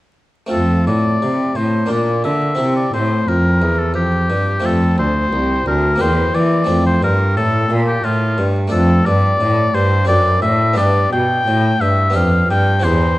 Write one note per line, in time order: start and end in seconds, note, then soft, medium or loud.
0.46 1.84 A3 soft
0.46 1.85 C4 soft
0.46 1.85 F4 soft
0.51 0.83 F2 soft
0.51 0.89 F2 medium
0.51 0.84 A4 medium
0.87 1.22 A2 medium
0.87 1.19 A2 medium
0.87 1.57 D5 medium
1.22 1.53 C3 soft
1.22 1.56 C3 medium
1.55 1.87 A2 soft
1.55 1.90 A2 medium
1.55 1.90 C5 medium
1.86 2.21 A#2 soft
1.86 2.55 A#3 soft
1.86 2.55 D4 soft
1.86 2.56 F4 soft
1.90 2.27 A#2 medium
1.90 2.24 D5 medium
2.24 2.55 D3 soft
2.24 2.58 D3 medium
2.24 2.75 E5 medium
2.55 2.89 C3 medium
2.55 2.92 C3 medium
2.55 4.59 C4 soft
2.55 4.59 E4 soft
2.76 2.93 D5 medium
2.94 3.26 A2 medium
2.94 3.24 A2 soft
2.94 3.30 C5 medium
3.27 3.64 F2 medium
3.27 3.59 F2 medium
3.27 3.81 A#4 medium
3.62 3.93 E2 soft
3.62 3.97 E2 medium
3.79 3.95 A4 medium
3.94 4.26 F2 medium
3.94 4.32 F2 medium
3.94 4.67 G4 medium
4.30 4.61 G2 medium
4.30 4.64 G2 medium
4.60 4.95 A3 medium
4.60 4.96 C4 soft
4.60 5.96 F4 soft
4.64 4.95 F2 medium
4.64 5.01 F2 medium
4.64 4.99 A4 medium
4.98 5.29 D2 medium
4.98 5.32 D2 medium
4.98 5.66 C5 medium
5.32 5.66 C2 medium
5.32 5.63 C2 medium
5.66 5.97 D2 medium
5.66 6.00 D2 medium
5.66 6.02 A#4 medium
5.96 6.64 A#3 medium
5.96 6.65 C4 medium
5.96 6.66 G4 soft
6.01 6.31 E2 medium
6.01 6.34 E2 medium
6.01 6.36 C5 loud
6.35 6.65 E3 medium
6.35 6.68 E3 medium
6.35 6.86 D5 medium
6.64 6.99 A3 soft
6.64 7.00 C4 medium
6.64 8.67 A4 medium
6.69 6.99 F2 medium
6.69 7.02 F2 medium
6.86 7.03 C5 medium
7.03 7.33 G2 medium
7.03 7.38 G2 medium
7.03 7.36 A#4 loud
7.37 7.70 A2 medium
7.37 7.67 A2 medium
7.37 7.72 A4 loud
7.70 8.00 A#2 medium
7.70 8.04 A#2 medium
7.87 8.06 G4 medium
8.04 8.34 A2 medium
8.04 8.40 A2 medium
8.04 8.48 F4 loud
8.38 8.69 G2 medium
8.38 8.72 G2 medium
8.68 9.03 A3 medium
8.68 10.02 D4 medium
8.68 10.03 A4 medium
8.68 9.08 A4 medium
8.72 9.03 F2 medium
8.72 9.06 F2 medium
9.06 9.37 G2 medium
9.06 9.39 G2 medium
9.06 9.76 D5 loud
9.40 9.73 A2 medium
9.40 9.71 A2 medium
9.74 10.09 G2 medium
9.74 10.05 G2 medium
9.74 10.07 C5 loud
10.04 10.42 F#2 medium
10.04 10.73 C4 medium
10.04 10.74 D4 medium
10.04 10.74 A4 medium
10.04 10.41 D5 loud
10.09 10.39 F#2 medium
10.42 10.73 A2 medium
10.42 10.78 A2 medium
10.42 10.76 E5 loud
10.73 11.11 G2 medium
10.73 11.43 B3 medium
10.73 11.44 D4 medium
10.73 12.11 G4 medium
10.78 11.09 G2 medium
10.78 11.12 D5 loud
11.12 11.46 B2 medium
11.12 11.44 B2 medium
11.12 11.83 G5 loud
11.47 11.80 A2 medium
11.47 11.78 A2 medium
11.81 12.16 G2 medium
11.81 12.12 G2 medium
11.81 12.18 E5 loud
12.10 12.80 B3 medium
12.10 12.81 D4 medium
12.10 12.81 G4 medium
12.15 12.48 F2 medium
12.15 12.46 F2 medium
12.15 12.50 F5 medium
12.48 12.86 G2 medium
12.48 12.81 G2 medium
12.48 12.86 G5 loud
12.80 13.19 C4 medium
12.80 13.19 E4 medium
12.80 13.19 G4 medium
12.84 13.16 E2 medium
12.84 13.19 E2 medium
12.84 13.19 C5 loud